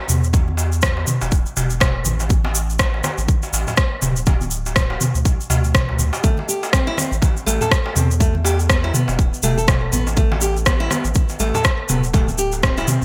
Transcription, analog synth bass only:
0.09 1.05 E2 medium
1.22 1.30 E1 medium
1.32 1.44 D1 medium
1.57 2.03 E1 loud
2.06 3.01 A1 medium
3.18 3.27 A1 loud
3.53 3.65 A1 medium
4.02 4.98 D1 medium
5.15 5.24 D2 loud
5.25 5.38 C2 medium
5.50 5.74 D2 loud
5.75 5.91 A1 medium
5.89 5.98 D2 medium
5.99 6.11 D2 medium
7.12 7.20 A1 loud
7.47 7.59 A1 medium
7.96 8.92 E2 medium
9.09 9.17 E1 loud
9.19 9.31 D1 medium
9.43 9.90 E1 loud
9.92 10.88 A1 medium
11.05 11.14 A1 medium
11.40 11.52 A1 loud
11.89 12.85 D1 medium

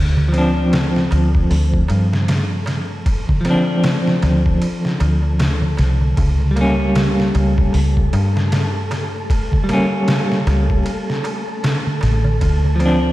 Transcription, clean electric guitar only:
0.29 3.39 F3 medium
0.33 3.41 C4 medium
0.38 3.44 D4 medium
3.41 6.14 F3 medium
3.45 6.16 C4 medium
3.50 6.18 D4 loud
6.51 9.62 G3 medium
6.56 9.64 A#3 medium
6.61 9.67 C#4 medium
9.64 12.37 G3 medium
9.69 12.39 A#3 medium
9.73 12.42 C#4 loud
12.76 13.12 F3 medium
12.81 13.12 C4 medium
12.85 13.12 D4 loud

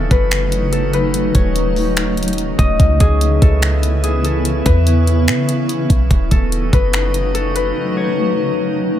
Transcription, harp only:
0.00 0.72 A4 medium
0.11 0.93 B4 medium
0.72 2.92 A4 medium
0.94 2.98 B4 medium
1.35 3.26 C#5 medium
2.58 4.37 D#5 medium
3.00 3.48 G#4 medium
3.42 4.09 A4 medium
4.03 4.31 G#4 medium
4.25 6.31 A4 medium
4.66 6.70 B4 medium
6.31 7.34 A4 medium
6.73 7.55 B4 medium
7.35 8.99 A4 loud
7.55 8.99 B4 medium
7.97 8.99 C#5 medium

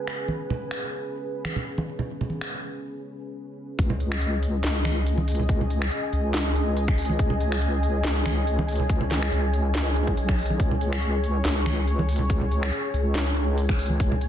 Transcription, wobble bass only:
3.79 4.62 C#2 loud
4.64 5.90 C#2 loud
6.13 7.18 C#2 loud
7.19 8.03 C#2 loud
8.05 9.31 C#2 loud
9.32 10.16 C#2 loud
10.18 10.59 B1 loud
10.60 11.43 C#2 loud
11.45 12.71 C#2 loud
12.94 13.99 C#2 loud
14.00 14.28 C#2 loud

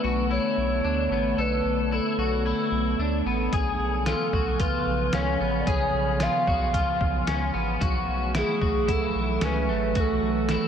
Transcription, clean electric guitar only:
0.04 0.30 F#4 medium
0.31 0.85 E4 medium
0.84 1.11 D4 medium
1.12 1.39 B3 medium
1.38 1.92 A4 medium
1.92 2.18 E4 medium
2.19 2.45 F#4 medium
2.46 2.99 E4 medium
3.00 3.26 D4 medium
3.26 3.53 B3 medium
3.53 4.06 G#4 medium
4.06 4.33 F4 medium
4.33 4.60 F#4 medium
4.60 5.13 F4 medium
5.14 5.40 C#4 medium
5.40 5.67 B3 medium
5.67 6.20 G#4 medium
6.20 6.47 F4 medium
6.47 6.73 F#4 medium
6.74 7.27 F4 medium
7.27 7.53 C#4 medium
7.54 7.81 B3 medium
7.81 8.34 F#4 medium
8.35 8.61 E4 medium
8.62 8.88 F#4 medium
8.88 9.42 E4 medium
9.42 9.69 C#4 medium
9.69 9.96 A3 medium
9.96 10.49 F#4 medium
10.49 10.68 E4 medium

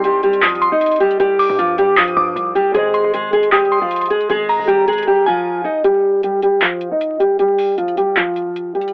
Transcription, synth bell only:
0.00 0.39 C6 medium
0.43 0.61 D#6 medium
0.62 0.80 C6 medium
1.39 1.94 D6 medium
1.97 2.16 D#6 medium
2.17 2.35 D6 medium
2.94 3.49 C6 medium
3.52 3.70 D#6 medium
3.72 3.90 C6 medium
4.49 5.23 A#5 medium
5.26 5.45 G#5 medium

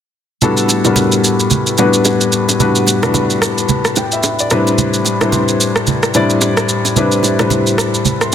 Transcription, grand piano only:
0.42 0.75 A2 medium
0.42 0.76 G3 medium
0.42 0.76 B3 medium
0.42 0.76 D4 medium
0.42 0.76 F#4 medium
0.42 0.76 A4 medium
0.85 1.60 A2 medium
0.85 1.60 G3 medium
0.85 1.61 B3 medium
0.85 1.61 D4 medium
0.85 1.61 F#4 medium
0.85 0.91 A#4 medium
0.93 1.64 B4 medium
1.78 2.45 A2 medium
1.78 2.45 G3 medium
1.78 2.46 B3 medium
1.78 2.46 D4 medium
1.78 2.46 F#4 medium
1.78 2.46 B4 medium
2.60 2.94 A2 medium
2.60 2.94 G3 medium
2.60 2.94 B3 medium
2.60 2.94 D4 medium
2.60 2.94 F#4 medium
2.60 2.94 B4 medium
3.03 3.79 A2 medium
3.03 3.79 G3 medium
3.03 3.79 B3 medium
3.03 3.79 D4 medium
3.03 3.79 F#4 medium
3.03 3.79 B4 medium
3.97 4.12 G5 medium
4.13 4.39 E5 medium
4.40 4.66 D5 medium
4.51 5.05 A2 medium
4.51 5.06 G3 medium
4.51 5.06 C4 medium
4.51 5.06 D4 medium
4.51 5.06 E4 medium
4.51 5.06 B4 loud
5.21 5.97 A2 medium
5.21 5.97 G3 medium
5.21 5.97 C4 medium
5.21 5.97 D4 medium
5.21 5.97 E4 medium
5.21 5.27 B4 medium
5.29 6.01 C5 medium
6.15 6.82 A2 medium
6.15 6.82 G3 medium
6.15 6.82 C4 medium
6.15 6.82 D4 medium
6.15 6.82 E4 medium
6.15 6.82 D5 medium
6.96 7.30 A2 medium
6.96 7.30 G3 medium
6.96 7.30 C4 medium
6.96 7.30 D4 medium
6.96 7.31 E4 medium
6.96 7.31 B4 medium
7.39 8.15 A2 medium
7.39 8.15 G3 medium
7.39 8.15 C4 medium
7.39 8.15 D4 medium
7.39 8.15 E4 medium
7.39 8.16 B4 medium
8.22 8.32 C6 medium

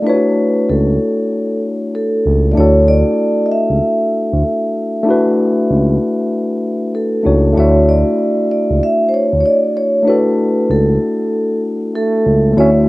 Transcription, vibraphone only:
0.07 0.71 B4 medium
0.70 1.59 A4 medium
1.95 2.48 A4 medium
2.52 2.57 D5 medium
2.57 2.89 C#5 medium
2.88 3.47 D5 medium
3.46 3.51 D#5 medium
3.52 6.91 E5 medium
6.95 7.59 A4 medium
7.58 7.89 C#5 medium
7.89 8.47 D5 medium
8.51 8.83 D5 medium
8.83 9.09 E5 medium
9.09 9.13 C5 medium
9.14 9.39 C#5 medium
9.40 9.45 C#5 medium
9.46 9.77 D5 medium
9.77 10.08 C#5 medium
10.08 10.71 B4 medium
10.71 11.60 A4 medium
11.95 12.53 A4 medium
12.58 12.72 C#5 medium

